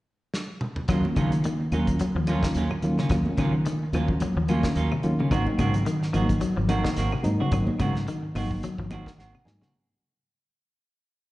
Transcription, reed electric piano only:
0.88 1.37 F#3 medium
0.88 1.37 A#3 medium
0.88 1.37 C#4 medium
0.88 1.37 F4 medium
1.72 2.04 F#3 medium
1.72 2.04 A#3 medium
1.72 2.04 C#4 medium
1.72 2.04 F4 medium
2.27 2.59 F#3 medium
2.27 2.59 A#3 medium
2.27 2.59 C#4 medium
2.27 2.59 F4 medium
2.83 3.00 F#3 medium
2.83 3.00 A#3 medium
2.83 3.00 C#4 medium
2.83 3.00 F4 medium
3.11 3.59 F#3 medium
3.11 3.59 A#3 medium
3.11 3.59 C#4 medium
3.11 3.59 F4 medium
3.94 4.25 F#3 medium
3.94 4.25 A#3 medium
3.94 4.25 C#4 medium
3.94 4.25 F4 medium
4.48 4.80 F#3 medium
4.48 4.80 A#3 medium
4.48 4.80 C#4 medium
4.48 4.80 F4 medium
5.03 5.20 F#3 medium
5.03 5.21 A#3 medium
5.03 5.21 C#4 medium
5.03 5.21 F4 medium
5.31 5.79 F#3 medium
5.31 5.79 A#3 medium
5.31 5.79 C4 medium
5.31 5.79 D#4 medium
6.14 6.46 F#3 medium
6.14 6.46 A#3 medium
6.14 6.46 C4 medium
6.14 6.46 D#4 medium
6.69 7.01 F#3 medium
6.69 7.01 A#3 medium
6.69 7.01 C4 medium
6.69 7.01 D#4 medium
7.23 7.41 F#3 medium
7.23 7.41 A#3 medium
7.23 7.41 C4 medium
7.23 7.41 D#4 medium
7.52 8.01 F#3 medium
7.52 8.00 A#3 medium
7.52 8.00 C4 medium
7.52 8.00 D#4 medium
8.35 8.67 F#3 medium
8.35 8.67 A#3 medium
8.35 8.67 C4 medium
8.35 8.67 D#4 medium
8.90 9.22 F#3 medium
8.90 9.23 A#3 medium
8.90 9.22 C4 medium
8.90 9.23 D#4 medium
9.18 9.44 F#5 medium
9.45 9.63 F#3 medium
9.45 9.63 A#3 medium
9.45 9.63 C4 medium
9.45 9.63 D#4 medium
9.45 9.72 G#5 medium

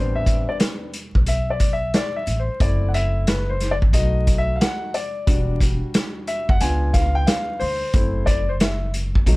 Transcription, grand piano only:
0.00 0.89 G3 medium
0.00 0.90 B3 soft
0.00 0.90 C4 soft
0.00 0.90 D4 medium
0.00 0.14 C5 medium
0.15 0.50 E5 medium
0.49 0.56 D5 medium
1.28 1.51 E5 medium
1.50 1.73 D5 medium
1.73 1.95 E5 medium
1.95 2.15 D5 medium
2.16 2.39 E5 medium
2.39 2.60 C5 medium
2.60 3.56 A3 soft
2.60 3.57 C4 soft
2.60 3.57 E4 medium
2.60 2.90 D5 medium
2.88 2.94 F#5 medium
2.94 3.28 E5 loud
3.28 3.50 B4 medium
3.49 3.70 C5 medium
3.71 3.76 D5 medium
3.93 4.90 A3 medium
3.93 4.90 D#4 soft
3.93 4.90 F#4 medium
3.93 4.40 D#5 loud
4.38 4.56 E5 loud
4.56 4.61 F5 medium
4.61 4.95 F#5 loud
4.94 5.57 D5 medium
5.26 6.56 G3 soft
5.26 6.57 D4 soft
5.26 6.57 F#4 medium
6.28 6.50 E5 medium
6.49 6.61 F#5 loud
6.61 7.57 B3 medium
6.61 7.57 D4 soft
6.61 7.57 F4 medium
6.61 6.92 G#5 loud
6.93 7.14 F5 loud
7.15 7.27 G5 loud
7.27 7.61 F5 medium
7.59 8.29 C5 loud
7.94 8.42 A3 medium
7.94 8.43 C4 soft
7.94 8.43 E4 medium
8.26 8.49 D5 medium
8.49 8.54 C5 medium
8.61 8.92 E5 medium
9.27 9.37 F#3 medium
9.27 9.37 A3 medium
9.27 9.37 D#4 medium

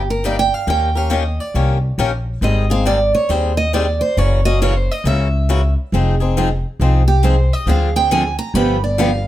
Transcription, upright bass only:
0.00 0.50 G1 medium
0.67 1.37 D#2 medium
1.54 1.92 C2 medium
1.98 2.35 A#1 medium
2.41 3.12 G#1 medium
3.29 4.00 D#2 medium
4.17 4.87 F#1 medium
5.04 5.74 C#2 medium
5.92 6.62 F1 medium
6.79 7.49 C2 medium
7.66 8.36 D2 medium
8.54 9.24 G1 medium

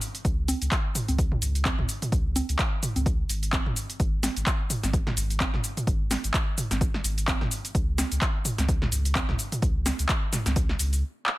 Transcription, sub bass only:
0.25 0.54 C#2 loud
0.62 0.68 C#2 medium
1.09 1.36 C#2 medium
1.42 1.71 C#2 loud
1.79 1.85 C#2 medium
2.12 2.42 C#2 loud
2.49 2.56 C#2 medium
2.96 3.24 C#2 medium
3.29 3.59 G#1 loud
3.66 3.73 G#1 loud
4.00 4.29 G#1 loud
4.36 4.43 G#1 medium
4.84 5.11 G#1 medium
5.17 5.46 G#1 loud
5.54 5.60 G#1 medium
5.87 6.17 G#1 loud
6.24 6.31 G#1 medium
6.71 6.99 G#1 medium
7.04 7.34 G#1 loud
7.41 7.48 G#1 loud
7.75 8.04 C#2 loud
8.12 8.18 C#2 medium
8.58 8.86 C#2 medium
8.92 9.21 C#2 loud
9.29 9.35 C#2 medium
9.62 9.92 C#2 loud
9.99 10.06 C#2 medium
10.46 10.74 C#2 medium
10.79 11.03 C#2 loud

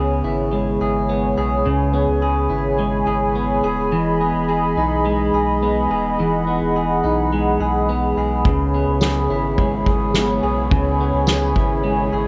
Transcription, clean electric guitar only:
0.00 1.64 C#3 medium
0.00 1.09 B3 medium
0.00 0.81 G#4 medium
0.24 2.49 E4 medium
0.53 2.78 G#3 medium
0.81 1.37 G#4 medium
1.09 1.93 B3 medium
1.37 2.22 G#4 medium
1.65 3.92 C#3 medium
1.93 3.35 B3 medium
2.22 3.07 G#4 medium
2.50 4.77 E4 medium
2.79 5.05 G#3 medium
3.07 3.64 G#4 medium
3.35 4.21 B3 medium
3.64 4.48 G#4 medium
3.92 6.19 E3 medium
4.21 5.62 B3 medium
4.49 5.34 G#4 medium
4.77 7.02 D#4 medium
5.06 7.32 G#3 medium
5.34 5.91 G#4 medium
5.63 6.47 B3 medium
5.91 6.76 G#4 medium
6.19 8.46 E3 medium
6.47 7.89 B3 medium
6.76 7.60 G#4 medium
7.04 8.51 D#4 medium
7.32 9.59 G#3 medium
7.60 8.17 G#4 medium
7.89 8.74 B3 medium
8.18 9.02 G#4 medium
8.46 10.70 C#3 medium
8.75 10.15 B3 medium
9.02 9.86 G#4 medium
9.30 11.55 E4 medium
9.59 11.83 G#3 medium
9.87 10.43 G#4 medium
10.15 11.00 B3 medium
10.43 11.27 G#4 medium
10.71 12.28 C#3 medium
11.00 12.28 B3 medium
11.28 12.13 G#4 medium
11.56 12.28 E4 medium
11.84 12.28 G#3 medium
12.13 12.28 G#4 medium

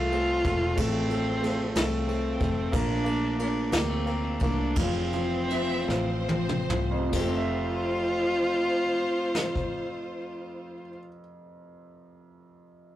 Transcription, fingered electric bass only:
0.00 0.41 C2 medium
0.45 0.75 E1 medium
0.77 1.71 A1 loud
1.76 2.37 C2 medium
2.41 2.72 F1 medium
2.73 3.69 A#1 loud
3.72 4.37 D2 medium
4.41 4.75 C2 medium
4.77 5.85 F1 loud
5.88 6.66 A1 loud
6.70 7.10 C2 medium
7.13 10.93 F1 loud

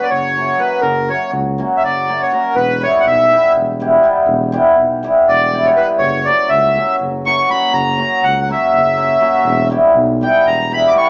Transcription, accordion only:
0.03 0.10 D5 medium
0.10 0.60 C#5 medium
0.60 0.81 B4 medium
0.82 1.09 A#4 medium
1.10 1.31 C#5 medium
1.77 1.83 E5 medium
1.84 2.22 D5 medium
2.21 2.32 C#5 medium
2.32 2.56 A#4 medium
2.56 2.82 B4 medium
2.83 3.00 C#5 loud
3.00 3.06 F#5 medium
3.07 3.53 E5 medium
5.29 5.66 D5 medium
5.65 5.70 C#5 medium
5.76 5.87 B4 medium
5.98 6.26 C#5 medium
6.25 6.50 D5 medium
6.49 6.96 E5 medium
7.26 7.50 C#6 loud
7.50 7.73 B5 medium
7.74 8.24 A#5 loud
8.24 8.40 F#5 medium
8.42 8.49 F#5 medium
8.51 9.68 E5 medium
10.23 10.47 G5 medium
10.47 10.72 A#5 medium
10.73 10.90 B5 loud
10.88 10.94 D6 medium
10.97 11.07 C#6 loud

